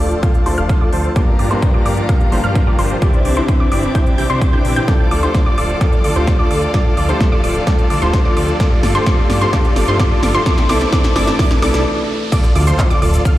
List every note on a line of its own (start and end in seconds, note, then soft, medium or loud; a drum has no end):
0.00 0.16 D1 loud
0.00 0.45 F3 medium
0.00 0.46 A3 medium
0.00 0.46 D4 medium
0.00 0.20 F4 medium
0.00 1.12 F4 medium
0.00 0.44 G4 loud
0.00 0.20 A4 medium
0.00 0.47 A4 loud
0.00 0.20 D5 medium
0.00 1.12 D5 medium
0.00 1.12 A5 medium
0.00 0.20 D6 medium
0.00 riser medium
0.11 closed hi-hat soft
0.23 0.43 F4 medium
0.23 0.43 A4 medium
0.23 0.43 F5 medium
0.23 0.43 F6 medium
0.23 kick loud
0.23 closed hi-hat medium
0.34 closed hi-hat soft
0.45 0.54 D2 medium
0.45 1.13 F3 medium
0.45 1.13 A3 medium
0.45 1.13 D4 medium
0.45 0.55 F4 medium
0.45 0.55 A4 medium
0.45 1.14 A4 medium
0.45 0.55 C5 loud
0.45 0.55 C6 loud
0.45 open hi-hat loud
0.58 0.74 D1 medium
0.58 0.78 F4 medium
0.58 0.78 A4 medium
0.58 0.78 F5 loud
0.58 0.78 F6 loud
0.58 closed hi-hat soft
0.69 kick loud
0.69 closed hi-hat medium
0.81 0.90 F4 medium
0.81 0.90 A4 medium
0.81 0.90 D5 loud
0.81 0.90 D6 loud
0.93 1.09 D2 loud
0.93 1.11 F4 medium
0.93 1.11 A4 medium
0.93 1.11 C5 loud
0.93 1.11 C6 loud
0.93 open hi-hat loud
1.04 closed hi-hat soft
1.15 1.48 G2 medium
1.15 1.48 F3 medium
1.15 1.36 A#3 medium
1.15 1.48 A#3 medium
1.15 1.36 D4 medium
1.15 1.48 D4 medium
1.15 1.36 F4 medium
1.15 1.36 G4 medium
1.15 3.00 G4 medium
1.15 1.48 G4 medium
1.15 1.36 D5 medium
1.15 3.00 F5 medium
1.15 3.00 A#5 medium
1.15 1.36 D6 medium
1.15 kick loud
1.15 closed hi-hat medium
1.39 1.55 G1 medium
1.39 1.49 A#3 medium
1.39 1.49 D4 medium
1.39 1.49 F4 medium
1.39 1.49 G4 medium
1.39 1.49 D5 medium
1.39 1.49 D6 medium
1.39 open hi-hat loud
1.50 2.29 G2 loud
1.50 2.29 F3 medium
1.50 1.71 A#3 medium
1.50 2.29 A#3 medium
1.50 1.71 D4 medium
1.50 2.30 D4 medium
1.50 1.71 F4 medium
1.50 2.30 F4 loud
1.50 1.71 G4 medium
1.50 1.71 C5 medium
1.50 1.71 C6 medium
1.50 closed hi-hat soft
1.62 kick loud
1.62 closed hi-hat medium
1.74 1.83 A#3 medium
1.74 1.83 D4 medium
1.74 1.83 F4 medium
1.74 1.83 G4 medium
1.74 1.83 D5 loud
1.74 1.83 D6 loud
1.86 2.02 G2 medium
1.86 2.06 A#3 medium
1.86 2.06 D4 medium
1.86 2.06 F4 medium
1.86 2.06 G4 medium
1.86 2.06 D5 medium
1.86 2.06 D6 medium
1.86 open hi-hat loud
1.97 closed hi-hat soft
2.09 2.29 A#3 medium
2.09 2.29 D4 medium
2.09 2.29 F4 medium
2.09 2.29 G4 medium
2.09 2.29 F5 medium
2.09 2.29 F6 medium
2.09 kick loud
2.09 closed hi-hat medium
2.21 closed hi-hat soft
2.31 2.40 G1 medium
2.31 2.99 G2 medium
2.31 2.99 F3 medium
2.31 2.41 A#3 medium
2.31 2.99 A#3 medium
2.31 2.41 D4 medium
2.31 3.00 D4 medium
2.31 2.41 F4 medium
2.31 2.41 G4 medium
2.31 3.00 G4 loud
2.31 2.41 C5 loud
2.31 2.41 C6 medium
2.31 open hi-hat loud
2.44 2.60 G2 medium
2.44 2.64 A#3 medium
2.44 2.64 D4 medium
2.44 2.64 F4 medium
2.44 2.64 G4 medium
2.44 2.64 F5 loud
2.44 2.64 F6 loud
2.44 closed hi-hat soft
2.55 kick loud
2.55 closed hi-hat medium
2.67 2.76 A#3 medium
2.67 2.76 D4 medium
2.67 2.76 F4 medium
2.67 2.76 G4 medium
2.67 2.76 D5 loud
2.67 2.76 D6 loud
2.79 2.95 G1 loud
2.79 2.97 A#3 medium
2.79 2.97 D4 medium
2.79 2.97 F4 medium
2.79 2.97 G4 medium
2.79 2.97 C5 loud
2.79 2.97 C6 loud
2.79 open hi-hat loud
3.01 3.34 E3 medium
3.01 3.22 C4 medium
3.01 3.34 C4 medium
3.01 3.22 D4 medium
3.01 3.34 D4 medium
3.01 3.22 E4 medium
3.01 3.22 G4 medium
3.01 3.34 G4 medium
3.01 4.86 C5 medium
3.01 3.22 D5 medium
3.01 4.86 E5 medium
3.01 3.22 D6 medium
3.01 8.56 D6 medium
3.01 kick loud
3.01 closed hi-hat medium
3.13 closed hi-hat soft
3.25 3.41 C2 medium
3.25 3.35 C4 medium
3.25 3.35 D4 medium
3.25 3.35 E4 medium
3.25 3.35 G4 medium
3.25 3.35 D5 medium
3.25 3.35 D6 medium
3.25 open hi-hat loud
3.36 4.15 E3 medium
3.36 4.15 C4 medium
3.36 3.57 C4 medium
3.36 3.57 D4 medium
3.36 4.16 D4 medium
3.36 3.57 E4 medium
3.36 4.16 E4 loud
3.36 3.57 G4 medium
3.36 3.57 C5 medium
3.36 3.57 C6 medium
3.48 kick loud
3.48 closed hi-hat medium
3.60 3.69 C4 medium
3.60 3.69 D4 medium
3.60 3.69 E4 medium
3.60 3.69 G4 medium
3.60 3.69 D5 loud
3.60 3.69 D6 loud
3.72 3.88 G1 loud
3.72 3.92 C4 medium
3.72 3.92 D4 medium
3.72 3.92 E4 medium
3.72 3.92 G4 medium
3.72 3.92 D5 medium
3.72 3.92 D6 medium
3.72 open hi-hat loud
3.83 closed hi-hat soft
3.95 4.15 C4 medium
3.95 4.15 D4 medium
3.95 4.15 E4 medium
3.95 4.15 G4 medium
3.95 4.15 G5 medium
3.95 4.15 G6 medium
3.95 kick loud
3.95 closed hi-hat medium
4.07 closed hi-hat soft
4.18 4.26 C2 medium
4.18 4.27 C4 loud
4.18 4.27 D4 medium
4.18 4.27 E4 medium
4.18 4.27 G4 medium
4.18 4.27 G5 loud
4.18 4.27 G6 loud
4.18 open hi-hat loud
4.30 4.46 C2 medium
4.30 4.50 C4 loud
4.30 4.50 D4 medium
4.30 4.50 E4 medium
4.30 4.50 G4 medium
4.30 4.50 C5 loud
4.30 4.50 C6 loud
4.30 closed hi-hat soft
4.41 kick loud
4.41 closed hi-hat medium
4.53 4.85 E3 medium
4.53 4.85 C4 medium
4.53 4.74 C4 medium
4.53 4.74 D4 medium
4.53 4.85 D4 medium
4.53 4.74 E4 medium
4.53 4.74 G4 medium
4.53 4.86 G4 medium
4.53 4.74 G5 loud
4.53 4.74 G6 loud
4.65 4.81 A#1 medium
4.65 open hi-hat loud
4.76 4.86 C4 medium
4.76 4.86 D4 medium
4.76 4.86 E4 medium
4.76 4.86 G4 medium
4.76 4.86 G5 loud
4.76 4.86 G6 loud
4.76 closed hi-hat soft
4.87 5.20 F3 medium
4.87 5.20 A3 medium
4.87 5.20 D4 medium
4.87 8.56 A4 medium
4.87 5.20 A4 medium
4.87 8.56 F5 medium
4.87 5.08 D6 medium
4.87 kick loud
4.87 snare soft
4.87 closed hi-hat medium
5.11 5.27 D2 medium
5.11 5.21 F4 medium
5.11 5.21 A4 medium
5.11 5.21 D5 medium
5.11 5.21 D6 medium
5.11 open hi-hat loud
5.22 5.79 F3 medium
5.22 5.79 A3 medium
5.22 5.79 D4 medium
5.22 5.43 F4 medium
5.22 5.80 G4 loud
5.22 5.43 A4 medium
5.22 5.43 C5 medium
5.22 5.43 C6 medium
5.22 closed hi-hat soft
5.34 kick loud
5.34 snare soft
5.34 closed hi-hat medium
5.46 5.55 F4 medium
5.46 5.55 A4 medium
5.46 5.55 D5 medium
5.46 5.55 D6 medium
5.58 5.74 D1 loud
5.58 5.78 F4 medium
5.58 5.78 A4 medium
5.58 5.78 D5 medium
5.58 5.78 D6 medium
5.58 open hi-hat loud
5.69 closed hi-hat soft
5.80 6.13 F3 medium
5.80 6.13 A3 medium
5.80 6.13 D4 medium
5.80 6.01 F4 medium
5.80 6.01 A4 medium
5.80 6.13 A4 medium
5.80 6.01 D5 medium
5.80 6.02 D6 medium
5.80 kick loud
5.80 snare soft
5.80 closed hi-hat medium
5.93 closed hi-hat soft
6.04 6.12 D2 medium
6.04 6.14 F4 medium
6.04 6.14 A4 medium
6.04 6.14 D5 medium
6.04 6.14 D6 medium
6.04 open hi-hat loud
6.15 6.32 D1 medium
6.15 6.72 F3 medium
6.15 6.72 A3 medium
6.15 6.72 D4 medium
6.15 6.36 F4 medium
6.15 6.73 G4 medium
6.15 6.36 A4 medium
6.15 6.36 C5 medium
6.15 6.36 C6 medium
6.15 closed hi-hat soft
6.27 kick loud
6.27 snare medium
6.27 closed hi-hat medium
6.39 6.48 F4 medium
6.39 6.48 A4 medium
6.39 6.48 D5 loud
6.39 6.48 D6 medium
6.51 6.67 D2 loud
6.51 6.71 F4 medium
6.51 6.71 A4 medium
6.51 6.71 D5 medium
6.51 6.71 D6 medium
6.51 open hi-hat loud
6.62 closed hi-hat soft
6.73 7.06 F3 medium
6.73 7.06 A3 medium
6.73 7.06 D4 medium
6.73 6.95 F4 medium
6.73 6.95 A4 medium
6.73 7.06 A4 medium
6.73 6.95 D5 medium
6.73 6.94 D6 medium
6.73 kick loud
6.73 snare medium
6.73 closed hi-hat medium
6.97 7.13 D2 loud
6.97 7.07 F4 medium
6.97 7.07 A4 medium
6.97 7.07 D5 medium
6.97 7.07 D6 medium
6.97 open hi-hat loud
7.08 7.65 F3 medium
7.08 7.65 A3 medium
7.08 7.65 D4 medium
7.08 7.29 F4 medium
7.08 7.66 G4 loud
7.08 7.29 A4 medium
7.08 7.29 C5 medium
7.08 7.29 C6 medium
7.08 closed hi-hat medium
7.21 kick loud
7.21 snare medium
7.21 closed hi-hat medium
7.32 7.41 F4 medium
7.32 7.41 A4 medium
7.32 7.41 D5 loud
7.32 7.41 D6 medium
7.44 7.60 D1 loud
7.44 7.64 F4 medium
7.44 7.64 A4 medium
7.44 7.64 D5 medium
7.44 7.64 D6 medium
7.44 open hi-hat loud
7.55 closed hi-hat medium
7.66 7.99 F3 medium
7.66 7.99 A3 medium
7.66 7.99 D4 medium
7.66 7.88 A4 medium
7.66 7.99 A4 medium
7.66 7.87 D6 medium
7.66 kick loud
7.66 snare medium
7.66 closed hi-hat medium
7.79 closed hi-hat soft
7.90 7.98 D2 medium
7.90 8.00 F4 medium
7.90 8.00 A4 medium
7.90 8.00 D5 medium
7.90 8.00 D6 medium
7.90 open hi-hat loud
8.01 8.18 D1 medium
8.01 8.58 F3 medium
8.01 8.58 A3 medium
8.01 8.58 D4 medium
8.01 8.22 F4 medium
8.01 8.59 G4 loud
8.01 8.22 A4 medium
8.01 8.22 C5 medium
8.01 8.22 C6 medium
8.01 closed hi-hat medium
8.13 kick loud
8.13 snare medium
8.13 closed hi-hat medium
8.25 8.34 F4 medium
8.25 8.34 A4 medium
8.25 8.34 D5 loud
8.25 8.34 D6 loud
8.37 8.53 D2 loud
8.37 8.57 F4 medium
8.37 8.57 A4 medium
8.37 8.57 D5 medium
8.37 8.57 D6 medium
8.37 open hi-hat loud
8.48 closed hi-hat medium
8.59 8.92 F3 medium
8.59 8.92 A3 medium
8.59 8.92 D4 medium
8.59 8.81 F4 medium
8.59 10.44 G4 medium
8.59 8.93 A4 medium
8.59 10.44 F5 medium
8.59 8.81 D6 medium
8.59 kick loud
8.59 snare medium
8.59 closed hi-hat medium
8.83 8.99 G1 loud
8.83 8.93 F4 medium
8.83 8.93 A4 medium
8.83 8.93 D5 medium
8.83 8.93 D6 medium
8.83 snare medium
8.83 open hi-hat loud
8.94 9.04 F3 medium
8.94 9.05 A3 medium
8.94 9.05 D4 medium
8.94 9.05 F4 medium
8.94 9.05 G4 loud
8.94 9.05 A4 medium
8.94 9.05 C5 medium
8.94 9.05 C6 medium
8.94 closed hi-hat medium
9.06 9.38 F3 medium
9.06 9.39 A3 medium
9.06 9.39 D4 medium
9.06 9.27 A4 medium
9.06 9.39 A4 medium
9.06 9.27 D5 medium
9.06 9.27 D6 medium
9.06 kick loud
9.06 snare medium
9.06 closed hi-hat medium
9.30 9.46 G2 loud
9.30 9.40 F4 medium
9.30 9.40 A4 medium
9.30 9.40 D5 medium
9.30 9.40 D6 medium
9.30 snare medium
9.30 open hi-hat loud
9.40 9.51 F3 loud
9.40 9.51 A3 medium
9.40 9.51 D4 medium
9.40 9.51 F4 medium
9.40 9.52 G4 loud
9.40 9.51 A4 medium
9.40 9.51 C5 medium
9.40 9.51 C6 medium
9.40 closed hi-hat medium
9.53 9.85 F3 medium
9.53 9.85 A3 medium
9.53 9.85 D4 medium
9.53 9.74 F4 medium
9.53 9.74 A4 medium
9.53 9.86 A4 medium
9.53 9.74 D5 loud
9.53 9.74 D6 loud
9.53 kick loud
9.53 snare medium
9.53 closed hi-hat medium
9.65 closed hi-hat soft
9.76 9.84 G1 medium
9.76 9.86 F4 medium
9.76 9.86 A4 medium
9.76 9.86 D5 medium
9.76 9.86 D6 medium
9.76 snare medium
9.76 open hi-hat loud
9.87 10.04 G2 medium
9.87 9.97 F3 loud
9.87 9.98 A3 medium
9.87 9.98 D4 medium
9.87 9.98 F4 medium
9.87 9.98 G4 loud
9.87 9.98 A4 medium
9.87 9.98 C5 medium
9.87 9.98 C6 medium
9.87 closed hi-hat medium
9.99 10.31 F3 medium
9.99 10.32 A3 medium
9.99 10.32 D4 medium
9.99 10.20 F4 medium
9.99 10.20 A4 medium
9.99 10.32 A4 medium
9.99 10.20 D6 loud
9.99 kick loud
9.99 snare medium
9.99 closed hi-hat medium
10.23 10.39 G1 loud
10.23 10.33 F4 medium
10.23 10.33 A4 medium
10.23 10.33 D5 medium
10.23 10.33 D6 medium
10.23 snare medium
10.23 open hi-hat loud
10.33 10.44 F3 medium
10.33 10.44 A3 medium
10.33 10.45 D4 medium
10.33 10.44 F4 medium
10.33 10.45 G4 loud
10.33 10.44 A4 medium
10.33 10.44 C5 medium
10.33 10.44 C6 medium
10.33 closed hi-hat medium
10.46 10.67 E3 medium
10.46 10.68 A3 medium
10.46 10.68 D4 medium
10.46 10.67 E4 medium
10.46 10.67 A4 medium
10.46 10.68 A4 medium
10.46 11.84 C5 medium
10.46 10.67 D5 medium
10.46 11.84 E5 medium
10.46 11.84 D6 medium
10.46 10.67 D6 medium
10.46 kick loud
10.46 snare medium
10.46 closed hi-hat medium
10.58 snare medium
10.58 closed hi-hat soft
10.69 10.85 C2 medium
10.69 10.91 E3 medium
10.69 10.91 A3 medium
10.69 10.91 D4 medium
10.69 10.90 E4 medium
10.69 10.90 A4 medium
10.69 10.91 A4 medium
10.69 10.90 D5 loud
10.69 10.90 D6 loud
10.69 snare medium
10.69 open hi-hat loud
10.81 snare medium
10.81 closed hi-hat medium
10.92 11.14 E3 medium
10.92 11.14 A3 medium
10.92 11.14 D4 medium
10.92 11.13 E4 medium
10.92 11.13 A4 medium
10.92 11.14 A4 medium
10.92 11.13 D5 loud
10.92 11.13 D6 loud
10.92 kick loud
10.92 snare loud
10.92 closed hi-hat medium
11.04 snare medium
11.04 closed hi-hat soft
11.15 11.32 G1 loud
11.15 11.37 E3 medium
11.15 11.37 A3 medium
11.15 11.37 D4 medium
11.15 11.36 E4 medium
11.15 11.36 A4 medium
11.15 11.38 A4 medium
11.15 11.36 D5 loud
11.15 11.36 D6 loud
11.15 snare loud
11.15 open hi-hat loud
11.27 snare medium
11.27 closed hi-hat medium
11.39 11.60 E3 medium
11.39 11.61 A3 medium
11.39 11.61 D4 medium
11.39 11.60 E4 medium
11.39 11.61 A4 medium
11.39 11.60 D6 loud
11.39 kick loud
11.39 snare loud
11.39 open hi-hat medium
11.39 swell medium
11.51 snare medium
11.51 closed hi-hat soft
11.62 11.70 C2 medium
11.62 11.84 E3 medium
11.62 11.84 A3 medium
11.62 11.84 D4 medium
11.62 11.83 E4 medium
11.62 11.83 A4 medium
11.62 11.84 A4 medium
11.62 11.83 D5 loud
11.62 11.83 D6 loud
11.62 snare loud
11.62 open hi-hat loud
11.74 11.86 C2 medium
11.74 snare medium
11.74 closed hi-hat medium
12.32 13.38 D3 medium
12.32 13.38 A3 medium
12.32 12.53 F4 medium
12.32 13.38 F4 medium
12.32 12.53 A4 medium
12.32 12.53 D5 medium
12.32 12.53 D6 loud
12.32 kick loud
12.32 closed hi-hat medium
12.32 crash loud
12.32 impact medium
12.32 shaker medium
12.44 cross-stick medium
12.44 shaker soft
12.55 12.72 D2 loud
12.55 12.65 F4 medium
12.55 12.65 A4 medium
12.55 12.65 D5 medium
12.55 12.65 D6 medium
12.55 open hi-hat loud
12.67 12.88 F4 medium
12.67 12.88 A4 medium
12.67 12.88 C5 loud
12.67 12.88 C6 medium
12.67 cross-stick medium
12.67 closed hi-hat medium
12.67 shaker medium
12.79 kick loud
12.79 clap loud
12.79 closed hi-hat medium
12.79 shaker medium
12.90 12.99 F4 loud
12.90 12.99 A4 medium
12.90 12.99 D5 loud
12.90 12.99 D6 loud
12.90 shaker soft
13.02 13.18 D1 loud
13.02 13.22 F4 medium
13.02 13.22 A4 medium
13.02 13.22 D5 medium
13.02 13.22 D6 medium
13.02 open hi-hat loud
13.14 closed hi-hat medium
13.14 shaker medium
13.25 13.38 F4 medium
13.25 13.38 A4 medium
13.25 13.38 F5 medium
13.25 13.38 F6 medium
13.25 kick loud
13.25 closed hi-hat medium
13.25 shaker medium